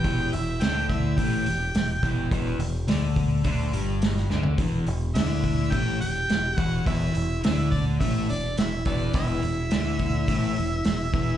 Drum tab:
HH |o-o-o-o-o-o-o-o-|o-o-o-o-o-o-o---|o-o-o-o-o-o-o-o-|o-o-o-o-o-o-o-o-|
SD |----o-------o---|----o-------ooo-|----o-------o---|----o-------o---|
FT |----------------|---------------o|----------------|----------------|
BD |o-----o-o-----o-|o-----o-o-------|o-----o-o-----o-|o-----o-o-----o-|

HH |o-o-o-o-o-o-o-o-|
SD |----o-------o---|
FT |----------------|
BD |o-----o-o-----o-|